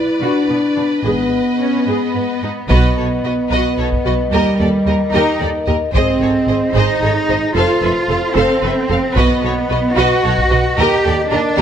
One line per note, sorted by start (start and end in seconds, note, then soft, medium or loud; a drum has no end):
0.00 0.20 E4 medium
0.00 2.46 B4 soft
0.00 1.01 D5 soft
0.21 0.29 B2 soft
0.21 1.04 D4 soft
0.21 0.47 F#4 soft
0.49 0.57 B2 soft
0.49 0.57 B3 soft
0.76 0.84 B2 soft
0.76 0.84 D4 soft
1.04 1.30 G#1 soft
1.04 1.12 G#2 soft
1.04 2.40 B3 soft
1.04 1.30 G#4 soft
1.04 2.47 D#5 soft
1.59 1.85 C#4 soft
1.87 1.95 G#2 soft
1.87 2.69 B3 soft
1.87 2.13 G#4 soft
2.15 2.23 G#2 soft
2.15 2.23 B3 soft
2.43 2.51 G#2 soft
2.43 2.52 D#4 soft
2.69 2.95 B1 medium
2.69 4.29 B3 medium
2.69 2.96 F#4 medium
2.69 2.95 B4 medium
2.69 4.28 B4 soft
2.69 2.95 D#5 medium
2.69 5.90 D#5 soft
2.69 taiko soft
2.97 3.05 B1 soft
2.97 3.06 F#4 soft
2.97 3.05 A4 soft
2.97 3.06 C#5 soft
3.24 3.32 B1 soft
3.24 3.33 F#4 soft
3.24 3.34 B4 soft
3.24 3.32 D#5 soft
3.51 3.59 B1 soft
3.51 3.77 F#4 soft
3.51 3.76 B4 soft
3.51 3.77 D#5 soft
3.78 3.86 B1 soft
3.78 3.86 F#4 soft
3.78 3.87 A4 soft
3.78 3.87 C#5 soft
3.92 taiko soft
4.05 4.13 B1 soft
4.05 4.13 F#4 soft
4.05 4.14 B4 soft
4.05 4.14 D#5 soft
4.31 4.41 D#2 soft
4.31 5.12 G3 medium
4.31 4.58 G4 soft
4.31 5.94 A#4 soft
4.31 4.59 A#4 soft
4.31 4.58 D#5 soft
4.59 4.68 D#2 soft
4.59 4.67 G4 soft
4.59 4.70 A4 soft
4.59 4.68 D5 soft
4.86 4.94 D#2 soft
4.86 4.94 G4 soft
4.86 4.97 A#4 soft
4.86 4.94 D#5 soft
5.13 5.21 D#2 soft
5.13 5.40 D#4 medium
5.13 5.39 G4 soft
5.13 5.39 A#4 soft
5.13 5.38 D#5 soft
5.40 5.48 D#2 soft
5.40 5.49 G4 soft
5.40 5.49 A4 soft
5.40 5.48 D5 soft
5.66 5.75 D#2 soft
5.66 5.76 G4 soft
5.66 5.76 A#4 soft
5.66 5.74 D#5 soft
5.93 6.02 G#1 soft
5.93 6.71 C4 medium
5.93 7.52 G#4 soft
5.93 6.20 G#4 soft
5.93 6.19 C5 soft
5.93 6.19 D#5 soft
5.93 7.52 D#5 soft
5.93 taiko soft
6.21 6.29 G#1 soft
6.21 6.29 G#4 soft
6.21 6.30 A4 soft
6.21 6.30 C#5 soft
6.48 6.56 G#1 soft
6.48 6.56 G#4 soft
6.48 6.58 C5 soft
6.48 6.56 D#5 soft
6.75 6.83 G#1 medium
6.75 7.56 D#4 medium
6.75 7.00 G#4 soft
6.75 7.00 C5 medium
6.75 7.01 D#5 soft
7.02 7.10 G#1 soft
7.02 7.10 G#4 soft
7.02 7.11 A4 soft
7.02 7.12 C#5 soft
7.28 7.37 G#1 soft
7.28 7.36 G#4 soft
7.28 7.38 C5 soft
7.28 7.38 D#5 soft
7.55 7.63 F1 medium
7.55 8.35 F4 medium
7.55 7.80 A4 soft
7.55 9.13 A4 soft
7.55 9.16 C5 soft
7.55 7.81 C5 soft
7.55 7.81 F5 soft
7.82 7.90 F1 soft
7.82 7.90 A4 soft
7.82 7.91 B4 soft
7.82 7.91 E5 soft
8.09 8.17 F1 soft
8.09 8.17 A4 soft
8.09 8.18 C5 soft
8.09 8.18 F5 soft
8.35 8.44 F1 medium
8.35 9.16 C4 medium
8.35 8.60 A4 medium
8.35 8.61 C5 medium
8.35 8.61 F5 medium
8.63 8.71 F1 soft
8.63 8.71 A4 soft
8.63 8.71 B4 soft
8.63 8.73 E5 soft
8.88 8.98 F1 soft
8.88 8.98 A4 soft
8.88 8.96 C5 soft
8.88 8.99 F5 soft
9.16 9.24 B1 medium
9.16 9.97 B3 medium
9.16 9.41 F#4 medium
9.16 9.41 B4 medium
9.16 10.75 B4 soft
9.16 11.62 D#5 soft
9.16 9.42 D#5 medium
9.16 taiko medium
9.43 9.51 B1 soft
9.43 9.51 F#4 soft
9.43 9.52 A4 soft
9.43 9.53 C#5 soft
9.70 9.78 B1 soft
9.70 9.78 F#4 soft
9.70 9.78 B4 soft
9.70 9.79 D#5 soft
9.97 10.06 B1 medium
9.97 10.78 F#4 medium
9.97 10.23 F#4 medium
9.97 10.22 B4 medium
9.97 10.23 D#5 medium
10.24 10.32 B1 soft
10.24 10.32 F#4 soft
10.24 10.32 A4 soft
10.24 10.32 C#5 soft
10.38 taiko soft
10.50 10.59 B1 soft
10.50 10.58 F#4 medium
10.50 10.59 B4 soft
10.50 10.59 D#5 soft
10.78 10.86 D#2 medium
10.78 11.31 G4 medium
10.78 11.03 G4 medium
10.78 11.62 A#4 soft
10.78 11.03 A#4 medium
10.78 11.03 D#5 soft
11.04 11.13 D#2 soft
11.04 11.13 G4 soft
11.04 11.12 A4 soft
11.04 11.14 D5 soft
11.31 11.40 D#2 soft
11.31 11.57 D4 medium
11.31 11.39 G4 soft
11.31 11.40 A#4 soft
11.31 11.40 D#5 soft
11.57 11.62 D#2 medium
11.57 11.62 C4 medium
11.57 11.62 G4 medium
11.57 11.62 A#4 medium